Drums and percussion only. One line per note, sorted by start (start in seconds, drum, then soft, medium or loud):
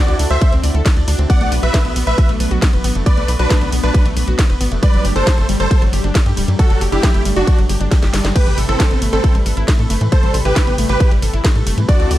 0.08 closed hi-hat soft
0.19 open hi-hat loud
0.41 kick loud
0.41 closed hi-hat medium
0.41 ride medium
0.53 closed hi-hat soft
0.64 open hi-hat loud
0.75 closed hi-hat soft
0.86 kick loud
0.86 snare loud
0.86 closed hi-hat medium
0.86 ride medium
0.97 closed hi-hat soft
1.08 open hi-hat loud
1.19 closed hi-hat soft
1.30 kick loud
1.30 closed hi-hat medium
1.30 ride medium
1.41 closed hi-hat soft
1.52 open hi-hat loud
1.63 closed hi-hat soft
1.74 kick loud
1.74 snare loud
1.74 closed hi-hat medium
1.74 ride medium
1.85 closed hi-hat soft
1.96 open hi-hat loud
2.07 closed hi-hat soft
2.18 kick loud
2.18 closed hi-hat medium
2.18 ride medium
2.29 closed hi-hat soft
2.40 open hi-hat loud
2.51 closed hi-hat soft
2.62 kick loud
2.62 snare loud
2.62 closed hi-hat medium
2.62 ride medium
2.73 closed hi-hat soft
2.84 open hi-hat loud
2.95 closed hi-hat soft
3.06 kick loud
3.06 closed hi-hat medium
3.06 ride medium
3.17 closed hi-hat soft
3.28 open hi-hat loud
3.39 closed hi-hat soft
3.50 kick loud
3.50 snare loud
3.50 closed hi-hat medium
3.50 ride medium
3.61 closed hi-hat soft
3.72 open hi-hat loud
3.84 closed hi-hat soft
3.94 kick loud
3.94 closed hi-hat medium
3.94 ride medium
4.06 closed hi-hat soft
4.17 open hi-hat loud
4.28 closed hi-hat soft
4.39 kick loud
4.39 snare loud
4.39 closed hi-hat medium
4.39 ride medium
4.50 closed hi-hat soft
4.61 open hi-hat loud
4.72 closed hi-hat soft
4.83 kick loud
4.83 closed hi-hat medium
4.83 ride medium
4.94 closed hi-hat soft
5.05 open hi-hat loud
5.16 closed hi-hat soft
5.27 kick loud
5.27 snare loud
5.27 closed hi-hat medium
5.27 ride medium
5.38 closed hi-hat soft
5.49 open hi-hat loud
5.60 closed hi-hat soft
5.71 kick loud
5.71 closed hi-hat medium
5.71 ride medium
5.82 closed hi-hat soft
5.93 open hi-hat loud
6.04 closed hi-hat soft
6.15 kick loud
6.15 snare loud
6.15 closed hi-hat medium
6.15 ride medium
6.26 closed hi-hat soft
6.37 open hi-hat loud
6.48 closed hi-hat soft
6.59 kick loud
6.59 closed hi-hat medium
6.59 ride medium
6.70 closed hi-hat soft
6.81 open hi-hat loud
6.92 closed hi-hat soft
7.03 kick loud
7.03 snare loud
7.03 closed hi-hat medium
7.03 ride medium
7.14 closed hi-hat soft
7.25 open hi-hat loud
7.36 closed hi-hat soft
7.47 kick loud
7.47 closed hi-hat medium
7.47 ride medium
7.59 closed hi-hat soft
7.69 open hi-hat loud
7.81 closed hi-hat soft
7.91 kick loud
7.91 snare medium
7.91 closed hi-hat medium
7.91 ride medium
8.03 snare medium
8.03 closed hi-hat soft
8.14 snare medium
8.14 open hi-hat loud
8.25 snare medium
8.36 kick loud
8.36 closed hi-hat medium
8.36 crash medium
8.36 ride medium
8.47 closed hi-hat soft
8.58 open hi-hat loud
8.69 closed hi-hat soft
8.80 kick loud
8.80 snare loud
8.80 closed hi-hat medium
8.80 ride medium
8.91 closed hi-hat soft
9.02 open hi-hat loud
9.13 closed hi-hat soft
9.24 kick loud
9.24 closed hi-hat medium
9.24 ride medium
9.35 closed hi-hat soft
9.46 open hi-hat loud
9.57 closed hi-hat soft
9.68 kick loud
9.68 snare loud
9.68 closed hi-hat medium
9.68 ride medium
9.79 closed hi-hat soft
9.90 open hi-hat loud
10.01 closed hi-hat soft
10.12 kick loud
10.12 closed hi-hat medium
10.12 ride medium
10.23 closed hi-hat soft
10.34 open hi-hat loud
10.45 closed hi-hat soft
10.56 kick loud
10.56 snare loud
10.56 closed hi-hat medium
10.56 ride medium
10.67 closed hi-hat soft
10.78 open hi-hat loud
10.89 closed hi-hat soft
11.00 kick loud
11.00 closed hi-hat medium
11.00 ride medium
11.11 closed hi-hat soft
11.22 open hi-hat loud
11.34 closed hi-hat soft
11.44 kick loud
11.44 snare loud
11.44 closed hi-hat medium
11.44 ride medium
11.56 closed hi-hat soft
11.67 open hi-hat loud
11.78 closed hi-hat soft
11.89 kick loud
11.89 closed hi-hat medium
11.89 ride medium
12.00 closed hi-hat soft
12.11 open hi-hat loud